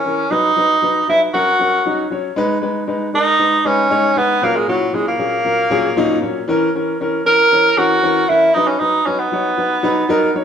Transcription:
Already playing: C#4
0.05 E3 C#4 A#4
0.31 F#3 D#4 B4
0.56 F#3 D#4 B4
0.82 F#3 D#4 B4
1.08 F#3 D#4 E4 B4
1.34 F#3 C#4 F#4 A#4
1.59 F#3 C#4 A#4
1.85 F#3 C#4 D#4
2.10 F#3 C#4 C#5
2.36 G#3 D#4 B4
2.62 G#3 D#4 B4
2.87 G#3 D#4 B4
3.13 G#3 D#4 A#4
3.39 G#3 D#4 B4
3.65 G#3 C#4 D#4 B4
3.90 G#3 D#4 C#5
4.16 G#3 B3 D#4 B4
4.42 A#2 F#3 A#3 C#4 A#4
4.56 G#3
4.68 A#2 F#3 C#4 E4
4.93 A#2 F#3 G#3 C#4 E4
5.08 A#3
5.18 A#2 F#3 C#4 G#4
5.45 A#2 F#3 C#4 A#4
5.70 A#2 F#3 C#4 G#4
5.96 A#2 F#3 C#4 D#4
6.21 A#2 F#3 C#4 C#5
6.48 E3 C#4 A#4
6.75 E3 C#4 A#4
7.00 E3 C#4 A#4
7.25 E3 C#4 A#4
7.51 E3 C#4 C#5
7.77 E3 C#4 F#4 A#4
8.03 E3 C#4 A#4
8.29 E3 C#4 E4 A#4
8.54 F#3 D#4 B4
8.67 C#4
8.79 F#3 D#4 B4
9.06 F#3 C#4 D#4 B4
9.19 B3
9.32 F#3 D#4 C#5
9.57 F#3 D#4 B4
9.83 F#3 D#4 B4
10.09 F#3 D#4 A#4
10.35 F#3 D#4 C#5

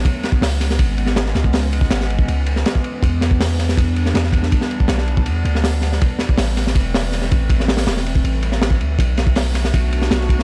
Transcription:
Already playing: B3
0.04 E3 G#3 C#4, kick, ride
0.23 snare, ride
0.32 kick
0.41 C#2, snare, open hi-hat
0.52 ride
0.60 snare, ride
0.70 snare
0.79 G#1, kick, ride
0.98 ride
1.06 snare
1.16 snare, ride
1.26 snare
1.35 C#2, snare, ride
1.44 kick
1.53 snare, open hi-hat
1.63 ride
1.73 ride
1.81 kick
1.91 G#1, snare, ride
2.00 snare
2.10 ride
2.19 kick
2.28 C#2, ride
2.46 ride
2.56 snare
2.65 snare, ride
2.75 kick
2.84 ride
3.02 E2 G3 D4, kick, ride
3.21 snare, ride
3.31 kick
3.40 snare, open hi-hat
3.50 ride
3.59 snare, ride
3.69 snare
3.77 E2, kick, ride
3.96 ride
4.06 snare
4.14 E2, snare, ride
4.24 snare
4.33 kick, ride
4.43 snare
4.52 kick, ride
4.61 snare
4.71 ride
4.80 kick
4.88 B1, snare, ride
4.98 snare
5.08 ride
5.17 kick
5.26 E2, ride
5.45 D2, ride
5.55 snare
5.64 snare, open hi-hat
5.73 ride
5.81 snare, ride
5.92 snare
6.00 E3 A3 C4, kick, ride
6.19 snare, ride
6.29 kick
6.37 A1, snare, open hi-hat
6.47 ride
6.57 snare, ride
6.67 snare
6.75 E1, kick, ride
6.94 snare, open hi-hat
7.04 ride
7.12 snare, ride
7.22 snare
7.31 A1, kick, ride
7.50 kick, ride
7.60 snare
7.68 snare, open hi-hat
7.77 snare, open hi-hat
7.87 E1, snare, open hi-hat
7.97 snare
8.06 ride
8.15 kick
8.24 A1, ride
8.43 ride
8.52 snare
8.62 snare, ride
8.70 kick
8.80 D2, ride
8.99 B1 A3 B3 D4 F#4, kick, ride
9.17 snare, ride
9.27 kick
9.36 snare, open hi-hat
9.46 ride
9.54 snare, ride
9.64 snare
9.74 B1, kick, ride
9.92 ride
10.01 snare
10.11 B1, snare, ride
10.21 snare
10.29 kick, ride
10.39 snare

